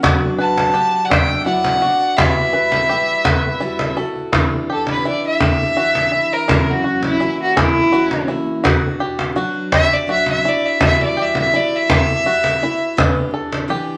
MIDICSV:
0, 0, Header, 1, 6, 480
1, 0, Start_track
1, 0, Key_signature, 1, "minor"
1, 0, Tempo, 718563
1, 27, Time_signature, 3, 2, 24, 8
1, 9334, End_track
2, 0, Start_track
2, 0, Title_t, "Fiddle"
2, 0, Program_c, 0, 110
2, 265, Note_on_c, 0, 81, 97
2, 698, Note_on_c, 0, 78, 63
2, 708, Note_off_c, 0, 81, 0
2, 737, Note_on_c, 0, 79, 96
2, 747, Note_off_c, 0, 78, 0
2, 967, Note_off_c, 0, 79, 0
2, 971, Note_on_c, 0, 78, 97
2, 1447, Note_on_c, 0, 76, 90
2, 1457, Note_off_c, 0, 78, 0
2, 2651, Note_off_c, 0, 76, 0
2, 3154, Note_on_c, 0, 69, 70
2, 3258, Note_off_c, 0, 69, 0
2, 3274, Note_on_c, 0, 71, 61
2, 3378, Note_off_c, 0, 71, 0
2, 3387, Note_on_c, 0, 74, 76
2, 3494, Note_off_c, 0, 74, 0
2, 3515, Note_on_c, 0, 76, 92
2, 4228, Note_on_c, 0, 70, 72
2, 4238, Note_off_c, 0, 76, 0
2, 4476, Note_on_c, 0, 66, 63
2, 4486, Note_off_c, 0, 70, 0
2, 4700, Note_off_c, 0, 66, 0
2, 4709, Note_on_c, 0, 64, 74
2, 4936, Note_off_c, 0, 64, 0
2, 4954, Note_on_c, 0, 66, 75
2, 5058, Note_off_c, 0, 66, 0
2, 5075, Note_on_c, 0, 64, 92
2, 5533, Note_off_c, 0, 64, 0
2, 6509, Note_on_c, 0, 76, 103
2, 6636, Note_on_c, 0, 74, 85
2, 6646, Note_off_c, 0, 76, 0
2, 6741, Note_off_c, 0, 74, 0
2, 6754, Note_on_c, 0, 76, 90
2, 6860, Note_off_c, 0, 76, 0
2, 6875, Note_on_c, 0, 76, 84
2, 6999, Note_on_c, 0, 74, 74
2, 7009, Note_off_c, 0, 76, 0
2, 7115, Note_on_c, 0, 76, 78
2, 7125, Note_off_c, 0, 74, 0
2, 7221, Note_off_c, 0, 76, 0
2, 7231, Note_on_c, 0, 76, 92
2, 7339, Note_off_c, 0, 76, 0
2, 7363, Note_on_c, 0, 74, 78
2, 7493, Note_on_c, 0, 76, 73
2, 7503, Note_off_c, 0, 74, 0
2, 7591, Note_off_c, 0, 76, 0
2, 7610, Note_on_c, 0, 76, 80
2, 7718, Note_on_c, 0, 74, 83
2, 7728, Note_off_c, 0, 76, 0
2, 7852, Note_on_c, 0, 76, 90
2, 7862, Note_off_c, 0, 74, 0
2, 7951, Note_off_c, 0, 76, 0
2, 7968, Note_on_c, 0, 76, 108
2, 8658, Note_off_c, 0, 76, 0
2, 9334, End_track
3, 0, Start_track
3, 0, Title_t, "Accordion"
3, 0, Program_c, 1, 21
3, 267, Note_on_c, 1, 78, 90
3, 672, Note_off_c, 1, 78, 0
3, 700, Note_on_c, 1, 74, 54
3, 730, Note_on_c, 1, 76, 74
3, 745, Note_off_c, 1, 74, 0
3, 976, Note_off_c, 1, 76, 0
3, 980, Note_on_c, 1, 74, 71
3, 1433, Note_off_c, 1, 74, 0
3, 1448, Note_on_c, 1, 71, 71
3, 2652, Note_off_c, 1, 71, 0
3, 9334, End_track
4, 0, Start_track
4, 0, Title_t, "Five-string banjo"
4, 0, Program_c, 2, 105
4, 21, Note_on_c, 2, 66, 83
4, 257, Note_on_c, 2, 71, 70
4, 258, Note_off_c, 2, 66, 0
4, 492, Note_on_c, 2, 67, 74
4, 495, Note_off_c, 2, 71, 0
4, 733, Note_off_c, 2, 67, 0
4, 736, Note_on_c, 2, 62, 64
4, 975, Note_off_c, 2, 62, 0
4, 975, Note_on_c, 2, 64, 77
4, 1214, Note_off_c, 2, 64, 0
4, 1214, Note_on_c, 2, 66, 67
4, 1453, Note_off_c, 2, 66, 0
4, 1455, Note_on_c, 2, 67, 81
4, 1690, Note_on_c, 2, 71, 69
4, 1693, Note_off_c, 2, 67, 0
4, 1930, Note_off_c, 2, 71, 0
4, 1933, Note_on_c, 2, 67, 68
4, 2169, Note_on_c, 2, 66, 70
4, 2171, Note_off_c, 2, 67, 0
4, 2407, Note_on_c, 2, 64, 73
4, 2409, Note_off_c, 2, 66, 0
4, 2647, Note_off_c, 2, 64, 0
4, 2650, Note_on_c, 2, 69, 71
4, 2888, Note_on_c, 2, 64, 70
4, 2889, Note_off_c, 2, 69, 0
4, 3128, Note_off_c, 2, 64, 0
4, 3137, Note_on_c, 2, 67, 65
4, 3372, Note_off_c, 2, 67, 0
4, 3375, Note_on_c, 2, 64, 65
4, 3608, Note_on_c, 2, 67, 65
4, 3611, Note_off_c, 2, 64, 0
4, 3848, Note_off_c, 2, 67, 0
4, 3852, Note_on_c, 2, 66, 73
4, 4086, Note_on_c, 2, 64, 69
4, 4090, Note_off_c, 2, 66, 0
4, 4321, Note_off_c, 2, 64, 0
4, 4329, Note_on_c, 2, 64, 77
4, 4568, Note_off_c, 2, 64, 0
4, 4569, Note_on_c, 2, 66, 66
4, 4808, Note_off_c, 2, 66, 0
4, 4811, Note_on_c, 2, 64, 74
4, 5050, Note_off_c, 2, 64, 0
4, 5052, Note_on_c, 2, 68, 63
4, 5290, Note_off_c, 2, 68, 0
4, 5293, Note_on_c, 2, 66, 77
4, 5531, Note_off_c, 2, 66, 0
4, 5532, Note_on_c, 2, 64, 73
4, 5769, Note_on_c, 2, 66, 77
4, 5770, Note_off_c, 2, 64, 0
4, 6009, Note_off_c, 2, 66, 0
4, 6012, Note_on_c, 2, 67, 67
4, 6251, Note_off_c, 2, 67, 0
4, 6252, Note_on_c, 2, 66, 78
4, 6492, Note_off_c, 2, 66, 0
4, 6497, Note_on_c, 2, 67, 67
4, 6734, Note_off_c, 2, 67, 0
4, 6740, Note_on_c, 2, 66, 81
4, 6976, Note_off_c, 2, 66, 0
4, 6981, Note_on_c, 2, 64, 73
4, 7210, Note_off_c, 2, 64, 0
4, 7218, Note_on_c, 2, 64, 85
4, 7456, Note_off_c, 2, 64, 0
4, 7461, Note_on_c, 2, 67, 76
4, 7698, Note_off_c, 2, 67, 0
4, 7706, Note_on_c, 2, 64, 80
4, 7941, Note_off_c, 2, 64, 0
4, 7949, Note_on_c, 2, 67, 72
4, 8183, Note_off_c, 2, 67, 0
4, 8190, Note_on_c, 2, 66, 81
4, 8424, Note_off_c, 2, 66, 0
4, 8436, Note_on_c, 2, 64, 79
4, 8668, Note_off_c, 2, 64, 0
4, 8673, Note_on_c, 2, 71, 79
4, 8905, Note_off_c, 2, 71, 0
4, 8908, Note_on_c, 2, 69, 72
4, 9145, Note_off_c, 2, 69, 0
4, 9152, Note_on_c, 2, 67, 75
4, 9334, Note_off_c, 2, 67, 0
4, 9334, End_track
5, 0, Start_track
5, 0, Title_t, "Steel-string acoustic guitar"
5, 0, Program_c, 3, 25
5, 17, Note_on_c, 3, 47, 84
5, 21, Note_on_c, 3, 54, 78
5, 22, Note_on_c, 3, 59, 78
5, 30, Note_on_c, 3, 62, 85
5, 30, Note_on_c, 3, 66, 85
5, 490, Note_off_c, 3, 62, 0
5, 494, Note_off_c, 3, 59, 0
5, 497, Note_on_c, 3, 59, 61
5, 498, Note_on_c, 3, 62, 60
5, 500, Note_off_c, 3, 47, 0
5, 504, Note_off_c, 3, 66, 0
5, 507, Note_on_c, 3, 66, 60
5, 732, Note_off_c, 3, 62, 0
5, 734, Note_off_c, 3, 59, 0
5, 740, Note_on_c, 3, 62, 37
5, 742, Note_on_c, 3, 59, 37
5, 745, Note_off_c, 3, 66, 0
5, 962, Note_off_c, 3, 54, 0
5, 965, Note_on_c, 3, 54, 54
5, 968, Note_off_c, 3, 59, 0
5, 971, Note_off_c, 3, 62, 0
5, 976, Note_on_c, 3, 59, 55
5, 979, Note_on_c, 3, 62, 54
5, 980, Note_on_c, 3, 66, 65
5, 1198, Note_off_c, 3, 66, 0
5, 1204, Note_off_c, 3, 62, 0
5, 1206, Note_on_c, 3, 66, 44
5, 1212, Note_on_c, 3, 62, 38
5, 1213, Note_off_c, 3, 54, 0
5, 1213, Note_off_c, 3, 59, 0
5, 1221, Note_on_c, 3, 59, 35
5, 1446, Note_off_c, 3, 59, 0
5, 1446, Note_on_c, 3, 52, 69
5, 1452, Note_off_c, 3, 66, 0
5, 1452, Note_on_c, 3, 55, 68
5, 1454, Note_off_c, 3, 62, 0
5, 1454, Note_on_c, 3, 59, 73
5, 1457, Note_on_c, 3, 64, 77
5, 1460, Note_on_c, 3, 66, 83
5, 1931, Note_off_c, 3, 55, 0
5, 1932, Note_off_c, 3, 52, 0
5, 1934, Note_off_c, 3, 59, 0
5, 1935, Note_off_c, 3, 64, 0
5, 1939, Note_off_c, 3, 66, 0
5, 1939, Note_on_c, 3, 55, 55
5, 1942, Note_on_c, 3, 59, 54
5, 1943, Note_on_c, 3, 64, 52
5, 1952, Note_on_c, 3, 66, 55
5, 2400, Note_off_c, 3, 55, 0
5, 2408, Note_off_c, 3, 59, 0
5, 2408, Note_on_c, 3, 55, 65
5, 2412, Note_off_c, 3, 64, 0
5, 2412, Note_off_c, 3, 66, 0
5, 2416, Note_on_c, 3, 59, 65
5, 2420, Note_on_c, 3, 64, 61
5, 2420, Note_on_c, 3, 66, 62
5, 2642, Note_off_c, 3, 66, 0
5, 2650, Note_on_c, 3, 66, 50
5, 2653, Note_off_c, 3, 55, 0
5, 2655, Note_off_c, 3, 64, 0
5, 2657, Note_off_c, 3, 59, 0
5, 2663, Note_on_c, 3, 64, 44
5, 2670, Note_on_c, 3, 59, 35
5, 2891, Note_on_c, 3, 52, 70
5, 2893, Note_off_c, 3, 59, 0
5, 2894, Note_off_c, 3, 66, 0
5, 2900, Note_off_c, 3, 64, 0
5, 2901, Note_on_c, 3, 59, 73
5, 2902, Note_on_c, 3, 62, 79
5, 2907, Note_on_c, 3, 67, 80
5, 3364, Note_off_c, 3, 52, 0
5, 3367, Note_off_c, 3, 59, 0
5, 3367, Note_on_c, 3, 52, 47
5, 3370, Note_off_c, 3, 62, 0
5, 3374, Note_off_c, 3, 67, 0
5, 3375, Note_on_c, 3, 59, 50
5, 3378, Note_on_c, 3, 62, 60
5, 3382, Note_on_c, 3, 67, 57
5, 3852, Note_off_c, 3, 52, 0
5, 3856, Note_off_c, 3, 59, 0
5, 3857, Note_off_c, 3, 62, 0
5, 3859, Note_off_c, 3, 67, 0
5, 3859, Note_on_c, 3, 52, 50
5, 3868, Note_on_c, 3, 59, 46
5, 3869, Note_on_c, 3, 62, 54
5, 3873, Note_on_c, 3, 67, 50
5, 4327, Note_off_c, 3, 52, 0
5, 4330, Note_off_c, 3, 59, 0
5, 4331, Note_on_c, 3, 42, 68
5, 4332, Note_on_c, 3, 49, 71
5, 4332, Note_on_c, 3, 58, 71
5, 4335, Note_off_c, 3, 67, 0
5, 4335, Note_on_c, 3, 52, 73
5, 4337, Note_off_c, 3, 62, 0
5, 4338, Note_on_c, 3, 66, 76
5, 4339, Note_on_c, 3, 61, 76
5, 4799, Note_off_c, 3, 52, 0
5, 4803, Note_off_c, 3, 58, 0
5, 4807, Note_on_c, 3, 52, 54
5, 4810, Note_off_c, 3, 61, 0
5, 4811, Note_on_c, 3, 58, 56
5, 4814, Note_off_c, 3, 42, 0
5, 4815, Note_off_c, 3, 49, 0
5, 4818, Note_on_c, 3, 61, 57
5, 4821, Note_off_c, 3, 66, 0
5, 4824, Note_on_c, 3, 66, 64
5, 5285, Note_off_c, 3, 52, 0
5, 5289, Note_off_c, 3, 58, 0
5, 5293, Note_on_c, 3, 52, 54
5, 5295, Note_off_c, 3, 61, 0
5, 5297, Note_on_c, 3, 58, 51
5, 5303, Note_on_c, 3, 61, 61
5, 5305, Note_off_c, 3, 66, 0
5, 5308, Note_on_c, 3, 66, 64
5, 5523, Note_off_c, 3, 66, 0
5, 5530, Note_off_c, 3, 61, 0
5, 5531, Note_on_c, 3, 66, 44
5, 5532, Note_off_c, 3, 58, 0
5, 5536, Note_off_c, 3, 52, 0
5, 5538, Note_on_c, 3, 61, 38
5, 5540, Note_on_c, 3, 58, 39
5, 5549, Note_on_c, 3, 52, 38
5, 5771, Note_off_c, 3, 58, 0
5, 5771, Note_on_c, 3, 47, 71
5, 5774, Note_on_c, 3, 59, 85
5, 5775, Note_off_c, 3, 66, 0
5, 5778, Note_off_c, 3, 61, 0
5, 5781, Note_on_c, 3, 62, 99
5, 5784, Note_off_c, 3, 52, 0
5, 5786, Note_on_c, 3, 66, 97
5, 6250, Note_on_c, 3, 54, 63
5, 6251, Note_off_c, 3, 59, 0
5, 6252, Note_off_c, 3, 62, 0
5, 6254, Note_on_c, 3, 59, 68
5, 6256, Note_off_c, 3, 47, 0
5, 6260, Note_on_c, 3, 62, 71
5, 6261, Note_off_c, 3, 66, 0
5, 6263, Note_on_c, 3, 66, 67
5, 6488, Note_off_c, 3, 66, 0
5, 6493, Note_off_c, 3, 62, 0
5, 6495, Note_off_c, 3, 54, 0
5, 6496, Note_on_c, 3, 66, 45
5, 6497, Note_off_c, 3, 59, 0
5, 6501, Note_on_c, 3, 62, 44
5, 6510, Note_on_c, 3, 59, 36
5, 6724, Note_off_c, 3, 59, 0
5, 6727, Note_on_c, 3, 54, 59
5, 6730, Note_off_c, 3, 62, 0
5, 6730, Note_off_c, 3, 66, 0
5, 6732, Note_on_c, 3, 59, 58
5, 6738, Note_on_c, 3, 62, 57
5, 6738, Note_on_c, 3, 66, 60
5, 6965, Note_off_c, 3, 66, 0
5, 6973, Note_off_c, 3, 62, 0
5, 6973, Note_on_c, 3, 66, 39
5, 6975, Note_off_c, 3, 54, 0
5, 6977, Note_off_c, 3, 59, 0
5, 6981, Note_on_c, 3, 62, 41
5, 6987, Note_on_c, 3, 59, 35
5, 7212, Note_off_c, 3, 59, 0
5, 7215, Note_on_c, 3, 55, 77
5, 7216, Note_on_c, 3, 52, 68
5, 7218, Note_off_c, 3, 66, 0
5, 7220, Note_on_c, 3, 59, 74
5, 7222, Note_off_c, 3, 62, 0
5, 7225, Note_on_c, 3, 64, 80
5, 7227, Note_on_c, 3, 66, 85
5, 7688, Note_off_c, 3, 55, 0
5, 7691, Note_off_c, 3, 59, 0
5, 7696, Note_on_c, 3, 55, 56
5, 7699, Note_on_c, 3, 59, 55
5, 7701, Note_off_c, 3, 52, 0
5, 7702, Note_off_c, 3, 66, 0
5, 7703, Note_off_c, 3, 64, 0
5, 7710, Note_on_c, 3, 66, 65
5, 7711, Note_on_c, 3, 64, 64
5, 7926, Note_off_c, 3, 66, 0
5, 7934, Note_on_c, 3, 66, 43
5, 7940, Note_off_c, 3, 64, 0
5, 7941, Note_off_c, 3, 55, 0
5, 7943, Note_off_c, 3, 59, 0
5, 7948, Note_on_c, 3, 64, 38
5, 7954, Note_on_c, 3, 59, 33
5, 8174, Note_off_c, 3, 59, 0
5, 8178, Note_off_c, 3, 64, 0
5, 8179, Note_on_c, 3, 55, 54
5, 8181, Note_off_c, 3, 66, 0
5, 8182, Note_on_c, 3, 59, 54
5, 8186, Note_on_c, 3, 64, 59
5, 8189, Note_on_c, 3, 66, 60
5, 8409, Note_off_c, 3, 66, 0
5, 8414, Note_off_c, 3, 64, 0
5, 8417, Note_on_c, 3, 66, 49
5, 8422, Note_on_c, 3, 64, 43
5, 8423, Note_off_c, 3, 59, 0
5, 8424, Note_off_c, 3, 55, 0
5, 8431, Note_on_c, 3, 59, 39
5, 8658, Note_off_c, 3, 59, 0
5, 8663, Note_off_c, 3, 66, 0
5, 8664, Note_on_c, 3, 52, 89
5, 8666, Note_off_c, 3, 64, 0
5, 8666, Note_on_c, 3, 59, 83
5, 8668, Note_on_c, 3, 62, 84
5, 8676, Note_on_c, 3, 67, 96
5, 9135, Note_off_c, 3, 52, 0
5, 9136, Note_off_c, 3, 59, 0
5, 9137, Note_on_c, 3, 52, 63
5, 9139, Note_off_c, 3, 62, 0
5, 9144, Note_on_c, 3, 59, 61
5, 9145, Note_off_c, 3, 67, 0
5, 9147, Note_on_c, 3, 62, 63
5, 9153, Note_on_c, 3, 67, 66
5, 9334, Note_off_c, 3, 52, 0
5, 9334, Note_off_c, 3, 59, 0
5, 9334, Note_off_c, 3, 62, 0
5, 9334, Note_off_c, 3, 67, 0
5, 9334, End_track
6, 0, Start_track
6, 0, Title_t, "Cajon"
6, 26, Note_on_c, 9, 36, 84
6, 26, Note_on_c, 9, 38, 96
6, 92, Note_off_c, 9, 36, 0
6, 92, Note_off_c, 9, 38, 0
6, 385, Note_on_c, 9, 38, 71
6, 451, Note_off_c, 9, 38, 0
6, 744, Note_on_c, 9, 36, 85
6, 744, Note_on_c, 9, 38, 83
6, 811, Note_off_c, 9, 36, 0
6, 811, Note_off_c, 9, 38, 0
6, 863, Note_on_c, 9, 38, 26
6, 930, Note_off_c, 9, 38, 0
6, 1098, Note_on_c, 9, 38, 67
6, 1165, Note_off_c, 9, 38, 0
6, 1458, Note_on_c, 9, 36, 86
6, 1458, Note_on_c, 9, 38, 91
6, 1525, Note_off_c, 9, 36, 0
6, 1525, Note_off_c, 9, 38, 0
6, 1816, Note_on_c, 9, 38, 70
6, 1883, Note_off_c, 9, 38, 0
6, 1934, Note_on_c, 9, 38, 28
6, 2001, Note_off_c, 9, 38, 0
6, 2171, Note_on_c, 9, 36, 82
6, 2171, Note_on_c, 9, 38, 83
6, 2238, Note_off_c, 9, 36, 0
6, 2238, Note_off_c, 9, 38, 0
6, 2289, Note_on_c, 9, 38, 28
6, 2356, Note_off_c, 9, 38, 0
6, 2411, Note_on_c, 9, 38, 24
6, 2478, Note_off_c, 9, 38, 0
6, 2532, Note_on_c, 9, 38, 68
6, 2599, Note_off_c, 9, 38, 0
6, 2776, Note_on_c, 9, 38, 30
6, 2843, Note_off_c, 9, 38, 0
6, 2892, Note_on_c, 9, 36, 75
6, 2892, Note_on_c, 9, 38, 80
6, 2959, Note_off_c, 9, 36, 0
6, 2959, Note_off_c, 9, 38, 0
6, 3251, Note_on_c, 9, 38, 66
6, 3318, Note_off_c, 9, 38, 0
6, 3610, Note_on_c, 9, 36, 76
6, 3610, Note_on_c, 9, 38, 79
6, 3677, Note_off_c, 9, 36, 0
6, 3677, Note_off_c, 9, 38, 0
6, 3976, Note_on_c, 9, 38, 66
6, 4043, Note_off_c, 9, 38, 0
6, 4337, Note_on_c, 9, 36, 89
6, 4337, Note_on_c, 9, 38, 83
6, 4404, Note_off_c, 9, 36, 0
6, 4404, Note_off_c, 9, 38, 0
6, 4693, Note_on_c, 9, 38, 65
6, 4760, Note_off_c, 9, 38, 0
6, 5056, Note_on_c, 9, 36, 82
6, 5056, Note_on_c, 9, 38, 78
6, 5123, Note_off_c, 9, 36, 0
6, 5123, Note_off_c, 9, 38, 0
6, 5417, Note_on_c, 9, 38, 64
6, 5484, Note_off_c, 9, 38, 0
6, 5778, Note_on_c, 9, 36, 84
6, 5778, Note_on_c, 9, 38, 80
6, 5844, Note_off_c, 9, 36, 0
6, 5844, Note_off_c, 9, 38, 0
6, 6138, Note_on_c, 9, 38, 66
6, 6204, Note_off_c, 9, 38, 0
6, 6495, Note_on_c, 9, 36, 81
6, 6495, Note_on_c, 9, 38, 79
6, 6561, Note_off_c, 9, 36, 0
6, 6561, Note_off_c, 9, 38, 0
6, 6856, Note_on_c, 9, 38, 69
6, 6923, Note_off_c, 9, 38, 0
6, 7218, Note_on_c, 9, 36, 84
6, 7218, Note_on_c, 9, 38, 85
6, 7285, Note_off_c, 9, 36, 0
6, 7285, Note_off_c, 9, 38, 0
6, 7582, Note_on_c, 9, 38, 74
6, 7649, Note_off_c, 9, 38, 0
6, 7947, Note_on_c, 9, 36, 87
6, 7947, Note_on_c, 9, 38, 88
6, 8014, Note_off_c, 9, 36, 0
6, 8014, Note_off_c, 9, 38, 0
6, 8309, Note_on_c, 9, 38, 71
6, 8375, Note_off_c, 9, 38, 0
6, 8673, Note_on_c, 9, 36, 87
6, 8673, Note_on_c, 9, 38, 83
6, 8740, Note_off_c, 9, 36, 0
6, 8740, Note_off_c, 9, 38, 0
6, 9034, Note_on_c, 9, 38, 68
6, 9101, Note_off_c, 9, 38, 0
6, 9334, End_track
0, 0, End_of_file